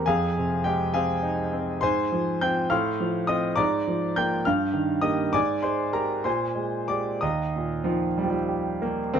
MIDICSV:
0, 0, Header, 1, 2, 480
1, 0, Start_track
1, 0, Key_signature, -3, "major"
1, 0, Tempo, 587084
1, 50, Time_signature, 6, 3, 24, 8
1, 4370, Tempo, 609756
1, 5330, Tempo, 642398
1, 7296, End_track
2, 0, Start_track
2, 0, Title_t, "Grand piano"
2, 0, Program_c, 0, 0
2, 0, Control_c, 0, 64, 127
2, 48, Note_on_c, 0, 80, 78
2, 60, Note_on_c, 0, 68, 59
2, 61, Note_on_c, 0, 41, 61
2, 61, Note_on_c, 0, 77, 60
2, 62, Control_c, 0, 64, 0
2, 191, Control_c, 0, 64, 127
2, 308, Note_on_c, 0, 48, 45
2, 496, Note_off_c, 0, 68, 0
2, 497, Note_off_c, 0, 77, 0
2, 523, Note_off_c, 0, 80, 0
2, 525, Note_on_c, 0, 79, 72
2, 536, Note_on_c, 0, 67, 58
2, 537, Note_on_c, 0, 56, 46
2, 677, Note_off_c, 0, 48, 0
2, 751, Note_off_c, 0, 67, 0
2, 761, Note_off_c, 0, 79, 0
2, 765, Note_on_c, 0, 80, 77
2, 772, Note_on_c, 0, 77, 57
2, 777, Note_on_c, 0, 68, 59
2, 779, Note_on_c, 0, 60, 50
2, 910, Note_off_c, 0, 56, 0
2, 1003, Note_on_c, 0, 63, 50
2, 1153, Note_off_c, 0, 60, 0
2, 1250, Note_on_c, 0, 60, 46
2, 1387, Note_off_c, 0, 63, 0
2, 1454, Note_off_c, 0, 41, 0
2, 1455, Note_off_c, 0, 77, 0
2, 1457, Note_off_c, 0, 68, 0
2, 1479, Note_on_c, 0, 84, 83
2, 1483, Note_off_c, 0, 80, 0
2, 1487, Note_off_c, 0, 60, 0
2, 1492, Note_on_c, 0, 44, 62
2, 1494, Note_on_c, 0, 72, 64
2, 1495, Note_on_c, 0, 80, 65
2, 1498, Control_c, 0, 64, 0
2, 1639, Control_c, 0, 64, 127
2, 1736, Note_on_c, 0, 53, 47
2, 1944, Note_off_c, 0, 72, 0
2, 1944, Note_off_c, 0, 80, 0
2, 1969, Note_off_c, 0, 84, 0
2, 1974, Note_on_c, 0, 91, 82
2, 1977, Note_on_c, 0, 60, 47
2, 1981, Note_on_c, 0, 65, 51
2, 1982, Note_on_c, 0, 79, 64
2, 2125, Note_off_c, 0, 53, 0
2, 2197, Note_off_c, 0, 60, 0
2, 2199, Note_off_c, 0, 65, 0
2, 2201, Note_off_c, 0, 44, 0
2, 2206, Note_on_c, 0, 77, 56
2, 2207, Note_off_c, 0, 79, 0
2, 2207, Note_on_c, 0, 89, 71
2, 2208, Note_on_c, 0, 84, 57
2, 2212, Note_on_c, 0, 45, 63
2, 2220, Note_off_c, 0, 91, 0
2, 2233, Control_c, 0, 64, 0
2, 2362, Control_c, 0, 64, 127
2, 2456, Note_on_c, 0, 53, 51
2, 2657, Note_off_c, 0, 77, 0
2, 2659, Note_off_c, 0, 84, 0
2, 2677, Note_on_c, 0, 87, 78
2, 2684, Note_on_c, 0, 60, 45
2, 2687, Note_on_c, 0, 75, 59
2, 2691, Note_off_c, 0, 89, 0
2, 2695, Note_on_c, 0, 65, 45
2, 2835, Note_off_c, 0, 53, 0
2, 2901, Note_off_c, 0, 60, 0
2, 2907, Note_off_c, 0, 45, 0
2, 2907, Note_off_c, 0, 65, 0
2, 2907, Note_on_c, 0, 86, 88
2, 2910, Note_off_c, 0, 75, 0
2, 2918, Note_on_c, 0, 82, 65
2, 2921, Note_on_c, 0, 44, 63
2, 2921, Note_on_c, 0, 74, 66
2, 2922, Note_off_c, 0, 87, 0
2, 2947, Control_c, 0, 64, 0
2, 3080, Control_c, 0, 64, 127
2, 3170, Note_on_c, 0, 53, 44
2, 3367, Note_off_c, 0, 82, 0
2, 3368, Note_off_c, 0, 74, 0
2, 3394, Note_off_c, 0, 86, 0
2, 3404, Note_on_c, 0, 91, 80
2, 3413, Note_on_c, 0, 58, 47
2, 3415, Note_on_c, 0, 65, 50
2, 3415, Note_on_c, 0, 79, 62
2, 3549, Note_off_c, 0, 53, 0
2, 3616, Note_off_c, 0, 44, 0
2, 3623, Note_off_c, 0, 58, 0
2, 3624, Note_off_c, 0, 65, 0
2, 3631, Note_off_c, 0, 79, 0
2, 3640, Note_on_c, 0, 89, 66
2, 3642, Note_off_c, 0, 91, 0
2, 3652, Note_on_c, 0, 77, 54
2, 3654, Note_on_c, 0, 43, 57
2, 3657, Control_c, 0, 64, 0
2, 3793, Control_c, 0, 64, 127
2, 3871, Note_on_c, 0, 51, 46
2, 4095, Note_off_c, 0, 77, 0
2, 4101, Note_on_c, 0, 87, 75
2, 4106, Note_on_c, 0, 58, 43
2, 4107, Note_on_c, 0, 75, 57
2, 4109, Note_on_c, 0, 67, 45
2, 4122, Note_off_c, 0, 89, 0
2, 4266, Note_off_c, 0, 51, 0
2, 4336, Note_off_c, 0, 58, 0
2, 4338, Note_off_c, 0, 67, 0
2, 4344, Note_off_c, 0, 75, 0
2, 4354, Note_off_c, 0, 43, 0
2, 4356, Note_on_c, 0, 86, 85
2, 4359, Note_off_c, 0, 87, 0
2, 4365, Note_on_c, 0, 44, 59
2, 4365, Note_on_c, 0, 80, 67
2, 4368, Note_on_c, 0, 74, 62
2, 4383, Control_c, 0, 64, 0
2, 4535, Control_c, 0, 64, 127
2, 4590, Note_on_c, 0, 84, 59
2, 4592, Note_off_c, 0, 80, 0
2, 4594, Note_off_c, 0, 74, 0
2, 4597, Note_on_c, 0, 56, 42
2, 4599, Note_on_c, 0, 72, 48
2, 4605, Note_off_c, 0, 86, 0
2, 4827, Note_off_c, 0, 56, 0
2, 4829, Note_off_c, 0, 72, 0
2, 4832, Note_on_c, 0, 70, 52
2, 4833, Note_on_c, 0, 82, 72
2, 4834, Note_on_c, 0, 67, 44
2, 4838, Note_on_c, 0, 56, 39
2, 4842, Note_off_c, 0, 84, 0
2, 5056, Note_off_c, 0, 67, 0
2, 5059, Note_off_c, 0, 56, 0
2, 5063, Note_off_c, 0, 70, 0
2, 5066, Note_off_c, 0, 44, 0
2, 5075, Note_on_c, 0, 84, 67
2, 5081, Note_off_c, 0, 82, 0
2, 5083, Note_on_c, 0, 46, 52
2, 5083, Note_on_c, 0, 72, 54
2, 5088, Note_on_c, 0, 80, 54
2, 5107, Control_c, 0, 64, 0
2, 5220, Control_c, 0, 64, 127
2, 5321, Note_on_c, 0, 56, 41
2, 5536, Note_off_c, 0, 72, 0
2, 5538, Note_off_c, 0, 80, 0
2, 5562, Note_off_c, 0, 84, 0
2, 5563, Note_off_c, 0, 56, 0
2, 5565, Note_on_c, 0, 86, 67
2, 5574, Note_on_c, 0, 56, 38
2, 5574, Note_on_c, 0, 67, 39
2, 5577, Note_on_c, 0, 74, 48
2, 5789, Note_off_c, 0, 46, 0
2, 5792, Note_off_c, 0, 56, 0
2, 5792, Note_off_c, 0, 67, 0
2, 5801, Note_off_c, 0, 74, 0
2, 5811, Note_on_c, 0, 87, 66
2, 5812, Note_off_c, 0, 86, 0
2, 5822, Note_on_c, 0, 39, 52
2, 5822, Note_on_c, 0, 82, 47
2, 5826, Note_on_c, 0, 75, 50
2, 5828, Control_c, 0, 64, 0
2, 5954, Control_c, 0, 64, 127
2, 6074, Note_on_c, 0, 46, 35
2, 6284, Note_on_c, 0, 53, 58
2, 6292, Note_on_c, 0, 51, 38
2, 6454, Note_off_c, 0, 46, 0
2, 6534, Note_off_c, 0, 53, 0
2, 6535, Note_on_c, 0, 55, 53
2, 6584, Note_on_c, 0, 53, 46
2, 6614, Note_off_c, 0, 55, 0
2, 6626, Note_on_c, 0, 55, 54
2, 6647, Note_off_c, 0, 53, 0
2, 6682, Note_off_c, 0, 51, 0
2, 6766, Note_on_c, 0, 67, 39
2, 6996, Note_off_c, 0, 82, 0
2, 6998, Note_off_c, 0, 75, 0
2, 7008, Note_off_c, 0, 55, 0
2, 7014, Note_on_c, 0, 58, 60
2, 7020, Note_off_c, 0, 87, 0
2, 7023, Note_on_c, 0, 55, 37
2, 7154, Note_off_c, 0, 67, 0
2, 7228, Note_off_c, 0, 39, 0
2, 7250, Note_off_c, 0, 58, 0
2, 7251, Note_on_c, 0, 60, 82
2, 7254, Note_off_c, 0, 55, 0
2, 7255, Note_on_c, 0, 63, 42
2, 7255, Note_on_c, 0, 67, 44
2, 7261, Note_on_c, 0, 39, 51
2, 7261, Note_on_c, 0, 70, 42
2, 7267, Control_c, 0, 64, 0
2, 7296, Note_off_c, 0, 39, 0
2, 7296, Note_off_c, 0, 60, 0
2, 7296, Note_off_c, 0, 63, 0
2, 7296, Note_off_c, 0, 67, 0
2, 7296, Note_off_c, 0, 70, 0
2, 7296, End_track
0, 0, End_of_file